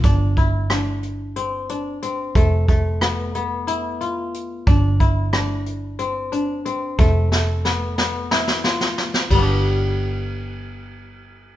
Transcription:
<<
  \new Staff \with { instrumentName = "Kora" } { \time 7/8 \key g \mixolydian \tempo 4 = 91 d'8 e'8 d'4 c'8 d'8 c'8 | a8 a8 b8 b8 e'8 f'4 | d'8 e'8 d'4 c'8 d'8 c'8 | a8 a8 b8 b8 e'8 f'4 |
<g b d' g'>2.~ <g b d' g'>8 | }
  \new Staff \with { instrumentName = "Fingered electric bass" } { \clef bass \time 7/8 \key g \mixolydian g,,2.~ g,,8 | f,,2.~ f,,8 | g,,2.~ g,,8 | f,,2.~ f,,8 |
g,,2.~ g,,8 | }
  \new DrumStaff \with { instrumentName = "Drums" } \drummode { \time 7/8 <hh bd>8 <hh bd>8 <hh ss>8 hh8 hh8 hh8 hh8 | <hh bd>8 <hh bd>8 <hh ss>8 hh8 hh8 hh8 hh8 | <hh bd>8 <hh bd>8 <hh ss>8 hh8 hh8 hh8 hh8 | <hh bd>8 sn8 sn8 sn8 sn16 sn16 sn16 sn16 sn16 sn16 |
<bd cymr>4 r4 r4. | }
>>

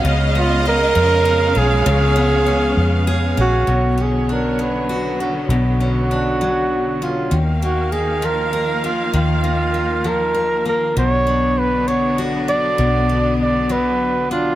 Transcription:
<<
  \new Staff \with { instrumentName = "Violin section" } { \time 6/8 \key b \lydian \tempo 4. = 66 dis''2~ dis''8 cis''8~ | cis''2~ cis''8 r8 | r2. | r2. |
r2. | r2. | r2. | r2. | }
  \new Staff \with { instrumentName = "Flugelhorn" } { \time 6/8 \key b \lydian r8 eis'8 ais'4. gis'8 | gis'2 r8 fis'8~ | fis'8 gis'8 ais'8 b'4 fis'8 | fis'2~ fis'8 eis'8 |
r8 fis'8 gis'8 ais'4 eis'8 | eis'4. ais'4 ais'8 | cis''4 b'8 cis''8 r8 d''8~ | d''4 d''8 b'4 eis'8 | }
  \new Staff \with { instrumentName = "Steel-string acoustic guitar" } { \time 6/8 \key b \lydian cis8 b8 cis'8 eis8 gis'8 cis'8 | cis8 b8 cis'4 gis'8 cis'8 | b,8 cis'8 d'8 fis8 fis'8 cis'8 | b,8 cis'8 d'8 fis4 cis'8 |
dis8 ais8 dis'8 eis8 ais'8 ais8 | dis8 ais8 dis'8 eis8 ais'8 ais8 | b,8 d'4 fis8 fis'8 d'8 | b,8 d'4 fis4 d'8 | }
  \new Staff \with { instrumentName = "String section" } { \time 6/8 \key b \lydian << { <cis gis eis''>2.~ | <cis gis eis''>2. | <d fis b>2.~ | <d fis b>2. |
<dis eis''>2.~ | <dis eis''>2. | <d fis d'>2.~ | <d fis d'>2. | } \\ { b2.~ | b2. | cis''2. | r2. |
ais2.~ | ais2. | b2.~ | b2. | } >> }
  \new Staff \with { instrumentName = "Fingered electric bass" } { \clef bass \time 6/8 \key b \lydian cis,4. eis,4 b,,8 | cis,4. eis,4 ais,,8 | b,,2. | b,,2. |
dis,2. | dis,2. | b,,2. | b,,2. | }
>>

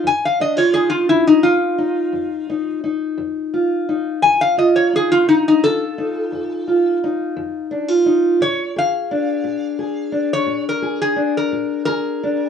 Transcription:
<<
  \new Staff \with { instrumentName = "Resonator guitar played with a steel bar" } { \time 12/8 \key f \dorian \tempo 4. = 58 aes''16 f''16 ees''16 des''16 aes'16 f'16 e'16 ees'16 f'2 r2 | aes''16 f''16 ees''16 des''16 aes'16 f'16 ees'16 ees'16 a'2 r2 | des''8 f''2~ f''16 des''8 bes'8 aes'8 bes'8. bes'4 | }
  \new Staff \with { instrumentName = "Steel-string acoustic guitar" } { \time 12/8 \key f \dorian << { r8 d'16 f'16 ees'4 ees'8 ees'4 ees'8 ees'4 f'8 ees'8 | r8 f'8 ees'4 f'8 ees'4 f'8 ees'4 d'16 f'16 ees'8 | r8 aes'8 d'4 aes'8 d'4 aes'8 d'4 aes'8 d'8 | } \\ { f,4 r8 f,4 r8 f,4 r8 f,4 r8 | f,4 r8 f,4 r8 f,4 r8 f,4 r8 | bes,4 r8 bes,4 r8 bes,4 r8 bes,4 r8 | } >> }
>>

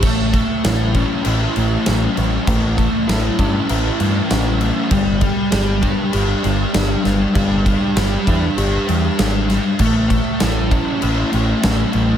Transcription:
<<
  \new Staff \with { instrumentName = "Distorted electric guitar" } { \time 4/4 \key a \mixolydian \tempo 4 = 98 a8 a8 e'8 cis'8 e'8 a8 cis'8 a8 | a8 a8 e'8 cis'8 e'8 a8 cis'8 a8 | g8 g8 g'8 d'8 g'8 g8 d'8 g8 | g8 g8 g'8 d'8 g'8 g8 d'8 g8 |
a8 a8 e'8 cis'8 e'8 a8 cis'8 a8 | }
  \new Staff \with { instrumentName = "Picked electric bass" } { \clef bass \time 4/4 \key a \mixolydian a,,4 a,,4 a,,8 a,,8 a,,8 a,,8 | a,,4 a,,8 g,8 a,,8 g,8 a,,4 | g,,4 g,,4 g,,8 g,,8 g,,8 g,,8 | g,,4 g,,8 e,8 g,,8 e,8 gis,,4 |
a,,4 a,,4 a,,8 a,,8 a,,8 a,,8 | }
  \new DrumStaff \with { instrumentName = "Drums" } \drummode { \time 4/4 <cymc bd>8 <cymc bd>8 <cymc sn>8 <cymc bd>8 cymc8 cymc8 <cymc sn>8 cymc8 | <cymc bd>8 <cymc bd>8 <cymc sn>8 <cymc bd>8 cymc8 cymc8 <cymc sn>8 cymc8 | <cymc bd>8 <cymc bd>8 <cymc sn>8 <cymc bd>8 cymc8 cymc8 <cymc sn>8 <cymc sn>8 | <cymc bd>8 <cymc bd>8 <cymc sn>8 <cymc bd>8 cymc8 cymc8 <cymc sn>8 <cymc sn>8 |
<cymc bd>8 <cymc bd>8 <cymc sn>8 <cymc bd>8 cymc8 cymc8 <cymc sn>8 cymc8 | }
>>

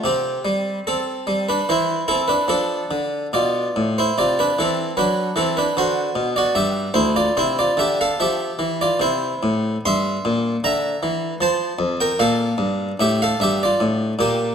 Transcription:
<<
  \new Staff \with { instrumentName = "Harpsichord" } { \time 3/4 \key c \major \tempo 4 = 74 <c' g'>4 <c' a'>8. <d' b'>16 <e' c''>8 <c' a'>16 <d' b'>16 | <d' a'>4 <f' d''>8. <e' c''>16 <f' d''>16 <d' b'>16 <c' a'>8 | <d' b'>8 <c' a'>16 <d' b'>16 <fis' c''>8. <fis' d''>16 <g' e''>8 <e' c''>16 <f' d''>16 | <e' c''>16 <f' d''>16 <g' e''>16 <a' f''>16 <g' e''>8. <f' d''>16 <e' c''>4 |
\key g \dorian <e'' c'''>4 <e'' bes''>4 <c'' a''>8. <bes' g''>16 | <a' f''>4 <g' e''>16 <a' f''>16 <g' e''>16 <f' d''>16 r8 <bes g'>8 | }
  \new Staff \with { instrumentName = "Harpsichord" } { \clef bass \time 3/4 \key c \major c8 g8 r8 g8 e8 e'8 | f8 d8 b,8 a,8 c8 e8 | fis8 e8 d8 b,8 g,8 d,8 | c8 d8 f8 e8 c8 a,8 |
\key g \dorian g,8 bes,8 d8 e8 f8 f,8 | bes,8 g,8 a,8 g,8 a,8 bes,8 | }
>>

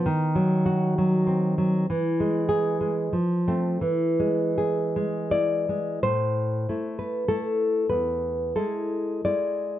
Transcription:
\new Staff \with { instrumentName = "Nylon-string guitar" } { \time 3/4 \key e \phrygian \tempo 4 = 95 << { r2. | r2. | r2 d''4 | c''4. b'8 a'4 |
b'4 a'4 d''4 | } \\ { dis8 fis8 fis'8 fis8 bis8 fis8 | e8 gis8 gis'8 gis8 f8 <a c'>8 | e8 gis8 gis'8 gis8 e'8 gis8 | a,4 <a e'>4 <a e'>4 |
e,4 <gis e'>4 <gis e'>4 | } >> }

